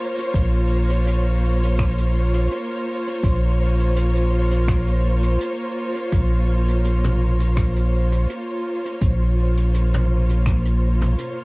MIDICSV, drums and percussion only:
0, 0, Header, 1, 2, 480
1, 0, Start_track
1, 0, Key_signature, -5, "minor"
1, 0, Tempo, 722892
1, 226, Time_signature, 4, 2, 24, 8
1, 7597, End_track
2, 0, Start_track
2, 0, Title_t, "Drums"
2, 122, Note_on_c, 9, 42, 50
2, 189, Note_off_c, 9, 42, 0
2, 228, Note_on_c, 9, 36, 99
2, 230, Note_on_c, 9, 42, 71
2, 294, Note_off_c, 9, 36, 0
2, 296, Note_off_c, 9, 42, 0
2, 594, Note_on_c, 9, 42, 52
2, 660, Note_off_c, 9, 42, 0
2, 709, Note_on_c, 9, 42, 64
2, 775, Note_off_c, 9, 42, 0
2, 1084, Note_on_c, 9, 42, 56
2, 1150, Note_off_c, 9, 42, 0
2, 1188, Note_on_c, 9, 36, 98
2, 1189, Note_on_c, 9, 26, 84
2, 1192, Note_on_c, 9, 42, 53
2, 1254, Note_off_c, 9, 36, 0
2, 1256, Note_off_c, 9, 26, 0
2, 1258, Note_off_c, 9, 42, 0
2, 1315, Note_on_c, 9, 42, 48
2, 1381, Note_off_c, 9, 42, 0
2, 1551, Note_on_c, 9, 42, 57
2, 1617, Note_off_c, 9, 42, 0
2, 1665, Note_on_c, 9, 42, 64
2, 1732, Note_off_c, 9, 42, 0
2, 2042, Note_on_c, 9, 42, 49
2, 2108, Note_off_c, 9, 42, 0
2, 2147, Note_on_c, 9, 36, 103
2, 2149, Note_on_c, 9, 42, 65
2, 2213, Note_off_c, 9, 36, 0
2, 2216, Note_off_c, 9, 42, 0
2, 2519, Note_on_c, 9, 42, 50
2, 2585, Note_off_c, 9, 42, 0
2, 2630, Note_on_c, 9, 42, 61
2, 2696, Note_off_c, 9, 42, 0
2, 2757, Note_on_c, 9, 42, 39
2, 2823, Note_off_c, 9, 42, 0
2, 2994, Note_on_c, 9, 42, 52
2, 3061, Note_off_c, 9, 42, 0
2, 3105, Note_on_c, 9, 42, 57
2, 3106, Note_on_c, 9, 36, 94
2, 3110, Note_on_c, 9, 26, 83
2, 3172, Note_off_c, 9, 42, 0
2, 3173, Note_off_c, 9, 36, 0
2, 3176, Note_off_c, 9, 26, 0
2, 3232, Note_on_c, 9, 42, 43
2, 3299, Note_off_c, 9, 42, 0
2, 3470, Note_on_c, 9, 42, 56
2, 3536, Note_off_c, 9, 42, 0
2, 3589, Note_on_c, 9, 42, 56
2, 3656, Note_off_c, 9, 42, 0
2, 3951, Note_on_c, 9, 42, 46
2, 4017, Note_off_c, 9, 42, 0
2, 4064, Note_on_c, 9, 42, 68
2, 4066, Note_on_c, 9, 36, 100
2, 4130, Note_off_c, 9, 42, 0
2, 4133, Note_off_c, 9, 36, 0
2, 4436, Note_on_c, 9, 42, 52
2, 4503, Note_off_c, 9, 42, 0
2, 4542, Note_on_c, 9, 42, 61
2, 4608, Note_off_c, 9, 42, 0
2, 4675, Note_on_c, 9, 45, 62
2, 4742, Note_off_c, 9, 45, 0
2, 4912, Note_on_c, 9, 42, 54
2, 4978, Note_off_c, 9, 42, 0
2, 5025, Note_on_c, 9, 36, 94
2, 5026, Note_on_c, 9, 26, 85
2, 5026, Note_on_c, 9, 42, 57
2, 5092, Note_off_c, 9, 36, 0
2, 5093, Note_off_c, 9, 26, 0
2, 5093, Note_off_c, 9, 42, 0
2, 5153, Note_on_c, 9, 42, 46
2, 5219, Note_off_c, 9, 42, 0
2, 5391, Note_on_c, 9, 42, 49
2, 5457, Note_off_c, 9, 42, 0
2, 5508, Note_on_c, 9, 42, 57
2, 5574, Note_off_c, 9, 42, 0
2, 5879, Note_on_c, 9, 42, 54
2, 5945, Note_off_c, 9, 42, 0
2, 5982, Note_on_c, 9, 42, 65
2, 5986, Note_on_c, 9, 36, 104
2, 6048, Note_off_c, 9, 42, 0
2, 6052, Note_off_c, 9, 36, 0
2, 6356, Note_on_c, 9, 42, 53
2, 6422, Note_off_c, 9, 42, 0
2, 6468, Note_on_c, 9, 42, 56
2, 6535, Note_off_c, 9, 42, 0
2, 6600, Note_on_c, 9, 45, 75
2, 6667, Note_off_c, 9, 45, 0
2, 6835, Note_on_c, 9, 42, 59
2, 6902, Note_off_c, 9, 42, 0
2, 6946, Note_on_c, 9, 26, 81
2, 6946, Note_on_c, 9, 36, 94
2, 6949, Note_on_c, 9, 42, 56
2, 7012, Note_off_c, 9, 26, 0
2, 7012, Note_off_c, 9, 36, 0
2, 7016, Note_off_c, 9, 42, 0
2, 7073, Note_on_c, 9, 42, 41
2, 7139, Note_off_c, 9, 42, 0
2, 7313, Note_on_c, 9, 42, 48
2, 7314, Note_on_c, 9, 45, 54
2, 7380, Note_off_c, 9, 42, 0
2, 7380, Note_off_c, 9, 45, 0
2, 7425, Note_on_c, 9, 42, 61
2, 7491, Note_off_c, 9, 42, 0
2, 7597, End_track
0, 0, End_of_file